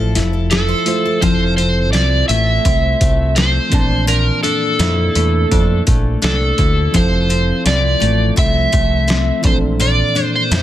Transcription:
Already playing: picked electric bass A1, steel-string acoustic guitar F3 E4 A4 C5, reed electric piano A3 E4 F4 C#5 D5
0.15 picked electric bass F1, steel-string acoustic guitar E4, snare, closed hi-hat
0.33 steel-string acoustic guitar A4
0.51 steel-string acoustic guitar E4, electric slide guitar A4, snare, closed hi-hat
0.69 steel-string acoustic guitar C5
0.85 reed electric piano A3 E4 F4 C5, steel-string acoustic guitar E4, closed hi-hat
1.06 steel-string acoustic guitar A4
1.20 picked electric bass F1, reed electric piano F3 C4 E4, steel-string acoustic guitar F3, electric slide guitar C5, kick, closed hi-hat
1.25 reed electric piano A4
1.57 steel-string acoustic guitar C4, electric slide guitar C5, closed hi-hat
1.93 picked electric bass C2, steel-string acoustic guitar E4, electric slide guitar D5, snare, closed hi-hat
2.28 picked electric bass A1, steel-string acoustic guitar A3, electric slide guitar E5, closed hi-hat
2.65 picked electric bass C2, steel-string acoustic guitar C4, kick, closed hi-hat
3.01 picked electric bass C2, steel-string acoustic guitar A3, kick, closed hi-hat
3.36 steel-string acoustic guitar C4, electric slide guitar C5, snare, closed hi-hat
3.69 picked electric bass A#1, steel-string acoustic guitar A#2, reed electric piano E3 C4 D4, kick, closed hi-hat
3.74 reed electric piano A5
4.07 steel-string acoustic guitar A#2, electric slide guitar A#4, closed hi-hat
4.43 steel-string acoustic guitar D4, electric slide guitar A4, closed hi-hat
4.79 picked electric bass F2, steel-string acoustic guitar E4, snare, closed hi-hat
5.15 picked electric bass E2, steel-string acoustic guitar A3, closed hi-hat
5.51 picked electric bass F2, steel-string acoustic guitar D4, kick, closed hi-hat
5.87 picked electric bass A#1, steel-string acoustic guitar A3, kick, closed hi-hat
6.22 picked electric bass C2, steel-string acoustic guitar D4, electric slide guitar A4, snare, closed hi-hat
6.58 picked electric bass D2, steel-string acoustic guitar E4, kick, closed hi-hat
6.92 picked electric bass F1, reed electric piano F3 C4 E4, steel-string acoustic guitar F3, kick, closed hi-hat
6.96 reed electric piano A4, electric slide guitar C5
7.30 steel-string acoustic guitar C4, closed hi-hat
7.66 picked electric bass C2, steel-string acoustic guitar E4, electric slide guitar D5, snare, closed hi-hat
8.00 picked electric bass A1, steel-string acoustic guitar A3, closed hi-hat
8.36 picked electric bass C2, steel-string acoustic guitar C4, electric slide guitar E5, kick, closed hi-hat
8.72 picked electric bass C2, steel-string acoustic guitar A3, kick, closed hi-hat
9.08 steel-string acoustic guitar C4, snare, closed hi-hat
9.42 picked electric bass A#1, steel-string acoustic guitar A#2, reed electric piano E3 C4 D4, kick, closed hi-hat
9.47 reed electric piano A4, electric slide guitar C5
9.79 steel-string acoustic guitar A#2, electric slide guitar D5, closed hi-hat
10.15 steel-string acoustic guitar D4, closed hi-hat
10.24 electric slide guitar C5
10.35 electric slide guitar C5
10.51 picked electric bass F2, steel-string acoustic guitar E4, snare, closed hi-hat

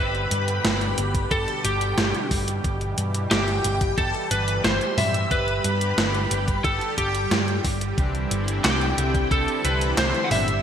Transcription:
Already playing: picked electric bass G1, analog synth pad B2 D3 G3 G4, lead electric guitar B4, string machine B5
0.15 closed hi-hat
0.31 picked electric bass G2, closed hi-hat
0.48 closed hi-hat
0.65 picked electric bass G1, snare, closed hi-hat
0.81 closed hi-hat
0.98 picked electric bass G1, closed hi-hat
1.14 kick, closed hi-hat
1.31 picked electric bass G1, lead electric guitar A4, string machine A5, kick, closed hi-hat
1.48 closed hi-hat
1.65 picked electric bass G1, lead electric guitar G4, string machine G5, closed hi-hat
1.81 closed hi-hat
1.98 picked electric bass G1, snare, closed hi-hat
2.15 closed hi-hat
2.31 picked electric bass G2, kick, open hi-hat
2.48 closed hi-hat
2.64 picked electric bass G1, analog synth pad E3, kick, closed hi-hat
2.81 closed hi-hat
2.98 picked electric bass G2, closed hi-hat
3.15 closed hi-hat
3.31 picked electric bass G1, lead electric guitar G4, string machine G5, snare, closed hi-hat
3.48 closed hi-hat
3.64 picked electric bass G1, closed hi-hat
3.81 kick, closed hi-hat
3.98 picked electric bass G1, lead electric guitar A4, string machine A5, kick, closed hi-hat
4.14 closed hi-hat
4.31 picked electric bass G1, lead electric guitar B4, string machine B5, closed hi-hat
4.48 closed hi-hat
4.64 picked electric bass G1, lead electric guitar C5, string machine C6, snare, closed hi-hat
4.81 closed hi-hat
4.98 picked electric bass G2, lead electric guitar E5, string machine E6, open hi-hat, mid tom
5.14 closed hi-hat
5.31 picked electric bass G1, analog synth pad D3 G4, lead electric guitar B4, string machine B5, kick, closed hi-hat
5.48 closed hi-hat
5.64 picked electric bass G2, closed hi-hat
5.81 closed hi-hat
5.98 picked electric bass G1, snare, closed hi-hat
6.14 closed hi-hat
6.31 picked electric bass G1, closed hi-hat
6.48 kick, closed hi-hat
6.64 picked electric bass G1, lead electric guitar A4, string machine A5, kick, closed hi-hat
6.81 closed hi-hat
6.98 picked electric bass G1, lead electric guitar G4, string machine G5, kick, closed hi-hat
7.15 closed hi-hat
7.31 picked electric bass G2, snare, closed hi-hat
7.48 closed hi-hat
7.64 picked electric bass G1, kick, open hi-hat
7.81 closed hi-hat
7.98 picked electric bass C2, analog polysynth E3 G3 C4 D4 G4, analog synth pad C4 E4, kick, closed hi-hat
8.15 closed hi-hat
8.31 picked electric bass G1, closed hi-hat
8.48 closed hi-hat
8.64 picked electric bass C2, lead electric guitar G4, string machine G5, snare, clap, closed hi-hat
8.81 closed hi-hat
8.98 picked electric bass C2, closed hi-hat
9.14 kick, closed hi-hat
9.31 picked electric bass C2, lead electric guitar A4, string machine A5, kick, closed hi-hat
9.48 closed hi-hat
9.64 picked electric bass C2, analog polysynth E3 G3 C4 D4 G4, lead electric guitar B4, string machine B5, closed hi-hat
9.81 closed hi-hat
9.98 picked electric bass C2, lead electric guitar C5, string machine C6, snare, clap, closed hi-hat
10.15 closed hi-hat
10.24 lead electric guitar F#5, string machine F#6
10.31 picked electric bass G1, lead electric guitar E5, string machine E6, open hi-hat, mid tom
10.48 closed hi-hat

